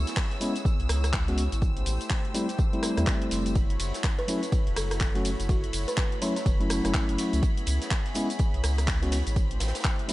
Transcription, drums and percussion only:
0.07 snare, closed hi-hat, tambourine
0.17 kick, snare, clap, closed hi-hat, tambourine
0.31 snare, closed hi-hat
0.41 closed hi-hat, open hi-hat, tambourine
0.56 closed hi-hat, tambourine
0.65 kick, closed hi-hat, tambourine
0.80 closed hi-hat
0.89 cross-stick, closed hi-hat, open hi-hat, tambourine
1.04 cross-stick, closed hi-hat, tambourine
1.13 kick, snare, clap, closed hi-hat, tambourine
1.28 snare, closed hi-hat
1.38 closed hi-hat, open hi-hat, tambourine
1.52 closed hi-hat, tambourine
1.62 kick, closed hi-hat, tambourine
1.77 closed hi-hat
1.86 open hi-hat, tambourine
2.01 closed hi-hat, tambourine
2.10 kick, snare, clap, closed hi-hat
2.25 closed hi-hat
2.34 closed hi-hat, open hi-hat, tambourine
2.49 snare, closed hi-hat, tambourine
2.58 kick, closed hi-hat, tambourine
2.73 closed hi-hat
2.83 cross-stick, closed hi-hat, open hi-hat, tambourine
2.97 cross-stick, closed hi-hat, tambourine
3.07 kick, snare, clap, closed hi-hat, tambourine
3.22 closed hi-hat
3.31 snare, closed hi-hat, open hi-hat, tambourine
3.46 closed hi-hat, tambourine
3.55 kick, closed hi-hat, ride, tambourine
3.70 closed hi-hat
3.80 closed hi-hat, open hi-hat, ride, tambourine
3.94 snare, closed hi-hat, tambourine
4.04 kick, snare, clap, closed hi-hat, ride, tambourine
4.18 snare, closed hi-hat
4.28 closed hi-hat, open hi-hat, ride, tambourine
4.43 closed hi-hat, tambourine
4.52 kick, closed hi-hat, ride, tambourine
4.67 closed hi-hat
4.76 cross-stick, closed hi-hat, open hi-hat, ride, tambourine
4.91 cross-stick, closed hi-hat, tambourine
5.00 kick, snare, clap, closed hi-hat, ride, tambourine
5.15 snare, closed hi-hat
5.25 closed hi-hat, open hi-hat, ride, tambourine
5.40 closed hi-hat, tambourine
5.49 kick, closed hi-hat, ride, tambourine
5.64 closed hi-hat
5.73 open hi-hat, ride, tambourine
5.88 closed hi-hat, tambourine
5.97 kick, snare, clap, closed hi-hat, ride, tambourine
6.12 closed hi-hat
6.22 closed hi-hat, open hi-hat, ride, tambourine
6.36 snare, closed hi-hat, tambourine
6.46 kick, closed hi-hat, ride, tambourine
6.61 closed hi-hat
6.70 cross-stick, closed hi-hat, open hi-hat, ride, tambourine
6.85 cross-stick, closed hi-hat, tambourine
6.94 kick, snare, clap, closed hi-hat, ride, tambourine
7.09 closed hi-hat
7.18 snare, closed hi-hat, open hi-hat, ride, tambourine
7.33 closed hi-hat, tambourine
7.43 kick, closed hi-hat, ride, tambourine
7.57 closed hi-hat
7.67 closed hi-hat, open hi-hat, ride, tambourine
7.82 snare, closed hi-hat, tambourine
7.91 kick, snare, clap, closed hi-hat, ride, tambourine
8.06 snare, closed hi-hat
8.14 closed hi-hat, open hi-hat, ride, tambourine
8.30 closed hi-hat, tambourine
8.39 kick, closed hi-hat, ride, tambourine
8.54 closed hi-hat
8.63 cross-stick, closed hi-hat, open hi-hat, ride, tambourine
8.78 cross-stick, closed hi-hat, tambourine
8.88 kick, snare, clap, closed hi-hat, ride, tambourine
9.02 snare, closed hi-hat
9.12 snare, closed hi-hat, open hi-hat, ride, tambourine
9.27 closed hi-hat, tambourine
9.36 kick, closed hi-hat, ride, tambourine
9.51 closed hi-hat
9.60 snare, closed hi-hat, open hi-hat, ride, tambourine
9.68 snare, closed hi-hat
9.75 snare, closed hi-hat, tambourine
9.80 snare, closed hi-hat
9.85 kick, snare, clap, ride, tambourine
9.99 closed hi-hat
10.09 closed hi-hat, open hi-hat, ride, tambourine

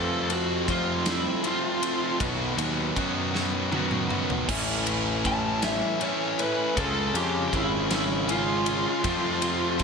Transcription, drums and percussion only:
0.30 ride
0.68 kick, ride
1.06 snare, ride
1.44 ride
1.83 ride
2.20 kick, ride
2.58 ride
2.96 kick, ride
3.35 snare
3.72 high tom
3.91 mid tom
4.10 mid tom
4.30 floor tom
4.49 kick, crash
4.87 ride
5.25 kick, ride
5.62 snare, ride
6.01 ride
6.39 ride
6.77 kick, ride
7.15 ride
7.53 kick, ride
7.91 snare, ride
8.29 ride
8.66 ride
9.04 kick, ride
9.42 ride
9.79 kick, ride

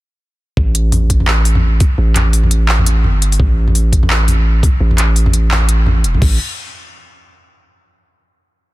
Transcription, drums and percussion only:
0.57 kick, mid tom
0.75 closed hi-hat
0.92 mid tom, open hi-hat
1.10 kick, closed hi-hat
1.20 mid tom
1.28 clap
1.45 open hi-hat
1.55 mid tom
1.80 kick, mid tom, open hi-hat
2.16 clap, closed hi-hat, mid tom
2.33 open hi-hat
2.44 mid tom
2.51 closed hi-hat
2.69 clap
2.79 mid tom
2.86 closed hi-hat
3.04 mid tom
3.22 closed hi-hat
3.32 open hi-hat
3.40 kick, mid tom
3.68 mid tom
3.75 open hi-hat
3.93 kick, closed hi-hat
4.03 mid tom
4.10 clap
4.28 mid tom, open hi-hat
4.63 kick, mid tom, open hi-hat
4.91 mid tom
4.98 clap, closed hi-hat
5.16 open hi-hat
5.26 mid tom
5.33 closed hi-hat
5.51 clap, mid tom
5.69 closed hi-hat
5.86 mid tom
6.04 closed hi-hat
6.14 mid tom
6.22 kick, crash

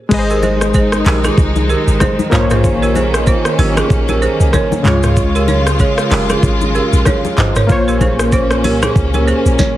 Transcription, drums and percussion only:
0.11 kick, crash, shaker
0.30 shaker
0.43 high conga, shaker
0.61 cross-stick, shaker
0.74 kick, shaker
0.92 cross-stick, shaker
1.06 clap, open hi-hat, high conga, shaker
1.24 cross-stick, high conga, shaker
1.37 kick, low conga, shaker
1.56 high conga, shaker
1.70 shaker
1.88 shaker
2.00 kick, cross-stick, high conga, low conga, shaker
2.19 high conga, shaker
2.32 clap, mid tom, high conga, shaker
2.50 cross-stick, mid tom, shaker
2.64 kick, shaker
2.83 shaker
2.95 high conga, shaker
3.14 cross-stick, shaker
3.27 kick, shaker
3.45 cross-stick, shaker
3.59 open hi-hat, high conga, shaker
3.77 cross-stick, high conga, shaker
3.90 kick, low conga, shaker
4.08 high conga, shaker
4.22 shaker
4.41 shaker
4.53 kick, cross-stick, high conga, low conga, shaker
4.72 high conga, shaker
4.85 clap, mid tom, high conga, shaker
5.03 cross-stick, mid tom, shaker
5.17 kick, shaker
5.36 shaker
5.48 high conga, shaker
5.67 cross-stick, shaker
5.79 kick, shaker
5.98 cross-stick, shaker
6.11 clap, open hi-hat, high conga, shaker
6.30 cross-stick, high conga, shaker
6.43 kick, low conga, shaker
6.61 high conga, shaker
6.75 shaker
6.93 shaker
7.05 kick, cross-stick, high conga, low conga, shaker
7.25 high conga, shaker
7.38 clap, mid tom, high conga, shaker
7.56 cross-stick, mid tom, shaker
7.69 kick, low conga, shaker
7.88 shaker
8.01 kick, high conga, shaker
8.19 cross-stick, shaker
8.32 kick, shaker
8.51 cross-stick, shaker
8.64 open hi-hat, high conga, shaker
8.82 cross-stick, high conga, shaker
8.96 kick, low conga, shaker
9.14 high conga, shaker
9.28 shaker
9.46 shaker
9.59 kick, snare, high conga, low conga, shaker

